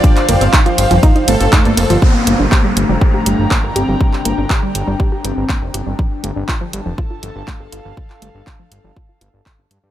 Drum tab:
RD |--x---x---x---x-|----------------|----------------|----------------|
HH |xxxxxxxxxxxxxxxx|--x---x---x---x-|--x---x---x---x-|--x---x---x---x-|
CP |-x--x-------x---|----x-------x---|-x--x-------x---|----x-------x---|
T2 |--o----o----o---|----------------|----------------|----------------|
BD |o---o---o---o---|o---o---o---o---|o---o---o---o---|o---o---o---o---|

RD |----------------|
HH |--x---x---x---x-|
CP |-x--x-------x---|
T2 |----------------|
BD |o---o---o---o---|